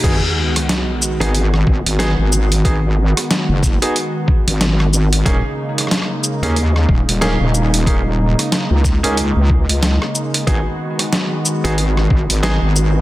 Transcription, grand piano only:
X:1
M:4/4
L:1/16
Q:"Swing 16ths" 1/4=92
K:G#m
V:1 name="Grand piano"
[B,DFG] z6 [B,DFG] z4 [B,DFG] z3 | [B,DFG] z6 [B,DFG] z8 | [A,CDG] z6 [A,CDG] z4 [A,CDG] z3 | [A,CDG] z6 [A,CDG] z8 |
[B,DFG] z6 [B,DFG] z4 [B,DFG] z3 |]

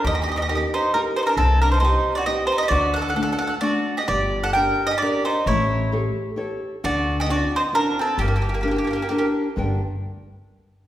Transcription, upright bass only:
X:1
M:3/4
L:1/8
Q:"Swing" 1/4=132
K:Gm
V:1 name="Upright bass" clef=bass
E,,4 z2 | C,,4 z2 | D,,4 z2 | G,,,4 z2 |
A,,,4 z2 | D,,4 z2 | G,,,4 z2 | G,,, z4 z |]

